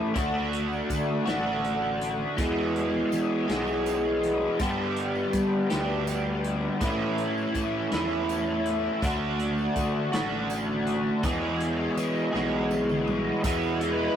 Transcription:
Already playing: A2 E3 A3 C#4 A4 C#5 E5
0.14 D2 D3 A3 D4 F#4 A4 D5 F#5, kick, closed hi-hat, tambourine
0.53 closed hi-hat
0.72 tambourine
0.90 D3, kick, closed hi-hat, tambourine
1.26 A1 D3 A3 D4 F#4, snare, closed hi-hat
1.64 closed hi-hat
2.01 closed hi-hat, tambourine
2.37 E2 B2 E3 G#3 B3 G#4 C#5 E5 G#5, kick, closed hi-hat, tambourine
2.76 closed hi-hat
3.12 E3, closed hi-hat, tambourine
3.48 B1 E2 B2 E3 G#3 B3 G#4, snare, closed hi-hat, tambourine
3.67 tambourine
3.86 closed hi-hat, tambourine
4.23 closed hi-hat, tambourine
4.59 G2 D3 G3 B3 D4 G4 B4 D5 G5, kick, closed hi-hat, tambourine
4.96 closed hi-hat
5.15 tambourine
5.33 G3, kick, closed hi-hat, tambourine
5.70 D2 G2 D3 G3 B3 D4 G4, snare, closed hi-hat
6.07 closed hi-hat, tambourine
6.44 closed hi-hat, tambourine
6.81 A2 E3 A3 C#4 E4 C#5 E5 A5, kick, closed hi-hat, tambourine
7.18 closed hi-hat
7.37 tambourine
7.54 A2, kick, closed hi-hat, tambourine
7.92 E2 A2 E3 A3 C#4 E4, snare, closed hi-hat
8.29 closed hi-hat, tambourine
8.65 closed hi-hat, tambourine
9.02 D2 D3 A3 D4 F#4 D5 F#5, kick, closed hi-hat, tambourine
9.39 closed hi-hat
9.58 tambourine
9.75 D3, kick, closed hi-hat, tambourine
10.12 A1 D3 A3 D4 F#4, snare, closed hi-hat
10.50 closed hi-hat, tambourine
10.87 closed hi-hat, tambourine
11.23 E2 B2 E3 G#3 B3 G#4 C#5 E5 G#5, kick, closed hi-hat, tambourine
11.60 closed hi-hat
11.97 E3, closed hi-hat, tambourine
12.16 tambourine
12.33 B1 E2 B2 E3 G#3 B3 G#4, snare
12.70 high tom, tambourine
12.89 mid tom, tambourine
13.07 mid tom, tambourine
13.44 E2 B2 E3 G#3 B3 E4, kick, closed hi-hat, tambourine
13.63 tambourine
13.80 E3 G#3 B3 E4 B4, closed hi-hat, tambourine

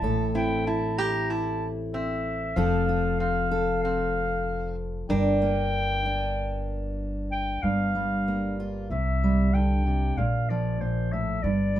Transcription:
Already playing: E4 A5
0.02 A1 A2 A4
0.35 C4 E4 G5
0.67 E4 A5
0.98 E4 G4 A#5
1.30 E4 A5
1.93 C4 E5
2.56 F1 F3 C4 F4 A4 F5
2.89 F4
3.20 C4 F5
3.51 A4
3.83 C4 F5
5.09 G1 G2 D4 A#4 G5
5.42 A#3
6.06 D4
7.32 G5
7.63 G1 G2 F5
7.95 G3
8.28 A#3
8.60 F4
8.90 C2 C3 E5
9.24 G3
9.54 D3 G5
9.87 C3
10.17 A#1 A#2 F5
10.49 F3 D5
10.81 A#2 C5
11.12 A2 E5
11.43 G1 G2 D5
11.76 G3

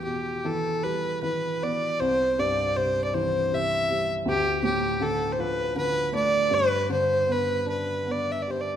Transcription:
Already playing: E2
0.05 B2 G4
0.44 E3 A4
0.83 G3 B4
1.22 E3 B4
1.62 B3 D5
2.00 C2 C5
2.39 G2 D5
2.76 C3 C5
3.04 D5
3.14 E3 C5
3.53 C3 E5
3.90 G3
4.25 D2 G4
4.63 A2 G4
5.01 D3 A4
5.32 C5
5.39 F3 B4
5.75 D3 B4
6.12 A3 D5
6.50 G2 B4
6.89 D3 C5
7.27 B3
7.32 B4
7.66 D4 B4
8.06 B3
8.11 D5
8.32 E5
8.42 D5
8.48 G4 C5
8.61 D5

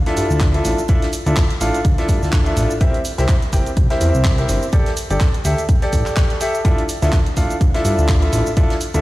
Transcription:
0.06 D4 E4 F4 A4 E5, snare, closed hi-hat
0.17 G2, closed hi-hat, open hi-hat, shaker
0.30 D2, shaker
0.40 kick, snare, clap, closed hi-hat, shaker
0.54 D4 E4 F4 A4 E5, closed hi-hat
0.65 A1, closed hi-hat, open hi-hat, shaker
0.78 shaker
0.88 D4 E4 F4 A4 E5, kick, closed hi-hat, shaker
1.02 snare, closed hi-hat
1.13 closed hi-hat, open hi-hat, shaker
1.26 D2 D4 E4 F4 A4 E5, closed hi-hat, shaker
1.36 kick, snare, clap, closed hi-hat, shaker
1.50 closed hi-hat
1.60 A1 D4 E4 F4 A4 F5, closed hi-hat, open hi-hat, shaker
1.74 closed hi-hat, shaker
1.85 D2, kick, closed hi-hat, shaker
1.98 D4 E4 F4 A4 E5, snare, closed hi-hat
2.09 G2, kick, closed hi-hat, open hi-hat, shaker
2.22 D2, snare, shaker
2.32 kick, snare, clap, closed hi-hat, shaker
2.46 D4 E4 F4 A4 E5, closed hi-hat
2.57 A1, closed hi-hat, open hi-hat, shaker
2.70 shaker
2.81 C4 E4 G4 A#4 E5, kick, closed hi-hat, shaker
2.94 closed hi-hat
3.05 closed hi-hat, open hi-hat, shaker
3.18 C2 C4 E4 G4 A#4 E5, snare, closed hi-hat, shaker
3.28 kick, snare, clap, closed hi-hat, shaker
3.42 closed hi-hat
3.53 G1 C4 E4 G4 A#4 G5, kick, closed hi-hat, open hi-hat, shaker
3.66 closed hi-hat, shaker
3.77 C2, kick, closed hi-hat, shaker
3.90 C4 E4 G4 A#4 E5, snare, closed hi-hat
4.01 E2, closed hi-hat, open hi-hat, shaker
4.14 C2, shaker
4.25 kick, snare, clap, closed hi-hat, shaker
4.38 C4 E4 G4 A#4 E5, closed hi-hat
4.49 G1, closed hi-hat, open hi-hat, shaker
4.62 shaker
4.72 G4 A4 D5, kick, closed hi-hat, shaker
4.86 snare, closed hi-hat
4.96 closed hi-hat, open hi-hat, shaker
5.10 G1 G4 A4 D5, closed hi-hat, shaker
5.20 kick, snare, clap, closed hi-hat, shaker
5.34 closed hi-hat
5.44 D2 G4 A4 E5, closed hi-hat, open hi-hat, shaker
5.58 closed hi-hat, shaker
5.68 kick, closed hi-hat, shaker
5.82 G4 A4 D5, snare, closed hi-hat
5.93 A1, kick, closed hi-hat, open hi-hat, shaker
6.06 snare, clap, shaker
6.16 G4 A4 D5, kick, snare, clap, closed hi-hat, shaker
6.30 closed hi-hat
6.40 G4 A4 E5, closed hi-hat, open hi-hat, shaker
6.54 shaker
6.65 D4 E4 F4 A4 E5, kick, closed hi-hat, shaker
6.78 closed hi-hat
6.89 closed hi-hat, open hi-hat, shaker
7.02 D2 D4 E4 F4 A4 E5, snare, closed hi-hat, shaker
7.12 kick, snare, clap, closed hi-hat, shaker
7.26 closed hi-hat
7.37 A1 D4 E4 F4 A4 F5, kick, closed hi-hat, open hi-hat, shaker
7.50 closed hi-hat, shaker
7.61 D2, kick, closed hi-hat, shaker
7.74 D4 E4 F4 A4 E5, snare, closed hi-hat
7.85 G2, closed hi-hat, open hi-hat, shaker
7.98 D2, shaker
8.08 kick, snare, clap, closed hi-hat, shaker
8.22 D4 E4 F4 A4 E5, closed hi-hat
8.33 A1, closed hi-hat, open hi-hat, shaker
8.46 shaker
8.56 D4 E4 F4 A4 E5, kick, closed hi-hat, shaker
8.70 snare, closed hi-hat
8.81 closed hi-hat, open hi-hat, shaker
8.94 D2 D4 E4 F4 A4 E5, closed hi-hat, shaker

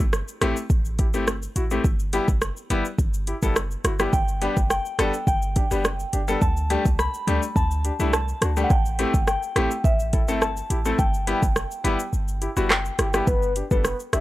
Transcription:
0.00 G1, kick, shaker
0.13 cross-stick, shaker
0.28 shaker
0.41 A1 A3 C4 E4 G4, cross-stick, closed hi-hat, shaker
0.56 shaker
0.70 A1, kick, shaker
0.85 shaker
0.99 E4 G4, kick, closed hi-hat, shaker
1.14 G1 A3 C4 E4 G4, shaker
1.27 cross-stick, shaker
1.42 shaker
1.56 A1 E4 F#4, closed hi-hat, shaker
1.71 A3 C4 E4 G4, shaker
1.84 G1, kick, shaker
2.00 shaker
2.13 G3 B3 E4 G4, closed hi-hat, shaker
2.28 F#1, kick, shaker
2.42 cross-stick, shaker
2.57 shaker
2.70 G1 G3 B3 E4 G4, closed hi-hat, shaker
2.85 shaker
2.98 G1, kick, shaker
3.14 shaker
3.27 E4 G4, closed hi-hat, shaker
3.42 F#1 G3 B3 E4 A4, kick, shaker
3.56 cross-stick, shaker
3.71 shaker
3.84 G1 E4 F#4, cross-stick, closed hi-hat, shaker
3.99 G3 B3 E4 G4, cross-stick, shaker
4.13 G1 G5, kick, shaker
4.28 shaker
4.42 G3 B3 D4 G4, closed hi-hat, shaker
4.57 F#1, kick, shaker
4.70 G5, cross-stick, shaker
4.85 shaker
4.99 G1 G3 B3 D4 A4, cross-stick, closed hi-hat, shaker
5.14 shaker
5.27 G1 G5, kick, shaker
5.42 shaker
5.56 D4 G4, kick, closed hi-hat, shaker
5.71 F#1 G3 B3 D4 G4, shaker
5.85 cross-stick, shaker
6.00 shaker
6.13 G1 D4 G4, closed hi-hat, shaker
6.28 G3 B3 D4 A4, shaker
6.41 D2 A5, kick, shaker
6.57 shaker
6.70 G3 A3 D4 G4, closed hi-hat, shaker
6.85 C2, kick, shaker
6.99 B5, cross-stick, shaker
7.14 shaker
7.27 D2 G3 A3 D4 G4, closed hi-hat, shaker
7.42 shaker
7.56 D2 A5, kick, shaker
7.71 shaker
7.85 D4 G4, closed hi-hat, shaker
8.00 C2 G3 A3 D4 E4, shaker
8.13 A5, cross-stick, shaker
8.28 shaker
8.42 D2 D4 F#4, cross-stick, closed hi-hat, shaker
8.57 G3 A3 D4 G4, shaker
8.64 F#5
8.70 A1 G5, kick, shaker
8.85 shaker
8.99 A3 C4 E4 G4, closed hi-hat, shaker
9.14 G1, kick, shaker
9.27 G5, cross-stick, shaker
9.43 shaker
9.56 A1 A3 C4 E4 G4, cross-stick, closed hi-hat, shaker
9.71 shaker
9.84 A1 E5, kick, shaker
10.00 shaker
10.13 E4 A4, kick, closed hi-hat, shaker
10.28 G1 A3 C4 E4 A4, shaker
10.42 A5, cross-stick, shaker
10.57 shaker
10.70 A1 E4 G4, closed hi-hat, shaker
10.85 A3 C4 E4 A4, shaker
10.99 G1 G5, kick, shaker
11.14 shaker
11.27 G3 B3 E4 G4, closed hi-hat, shaker
11.43 F#1, kick, shaker
11.56 cross-stick, shaker
11.71 shaker
11.84 G1 G3 B3 E4 G4, closed hi-hat, shaker
11.99 shaker
12.13 G1, shaker
12.28 shaker
12.41 E4 G4, closed hi-hat, shaker
12.57 F#1 G3 B3 E4 F#4, shaker
12.70 G5, cross-stick, clap, shaker
12.85 shaker
12.99 G1 E4 G4, cross-stick, closed hi-hat, shaker
13.14 G3 B3 E4 G4, cross-stick, shaker
13.27 G1 B4, kick, shaker
13.42 shaker
13.56 D4 G4, closed hi-hat, shaker
13.71 F#1 G3 B3 D4 A4 B4, kick, shaker
13.85 cross-stick, shaker
14.00 shaker
14.13 G1 D4 G4 E5, cross-stick, closed hi-hat, shaker

